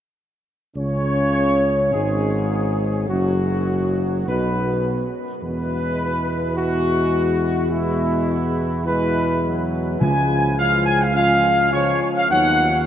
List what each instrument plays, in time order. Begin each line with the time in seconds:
0.75 tuba C#2, trombone section C#3, french horn section C#4, trumpet section C#5
1.92 tuba G#1, trombone section G#2, french horn section G#3, trumpet section G#4
3.08 tuba F#1, trombone section F#2, french horn section F#3, trumpet section F#4
4.27 tuba B1, trombone section B2, french horn section B3, trumpet section B4
5.41 tuba E2, trombone section B2 G#3, french horn section G#3 E4, trumpet section B4
6.55 trumpet section F#4
7.69 trombone section B2 G#3, french horn section G#3 E4, trumpet section E4
8.86 trombone section B2 G#3, french horn section G#3 E4, trumpet section B4
9.45 trombone section F#3
10.00 tuba C#2, timpani C#3, trombone section C#3 F3, french horn section G#3 F4, trumpet section G#5
10.56 trombone section C#3 F3, french horn section G#3 F4, trumpet section F5
10.86 trumpet section G#5
11.02 trumpet section F5
11.15 trombone section C#3 F3, french horn section G#3 F4, trumpet section F5
11.72 trombone section C#3 F3, french horn section G#3 F4, trumpet section C#5
12.01 trumpet section C#5
12.17 trumpet section F5
12.30 tuba D#2, trombone section F#3, french horn section B3 D#4, trumpet section F#5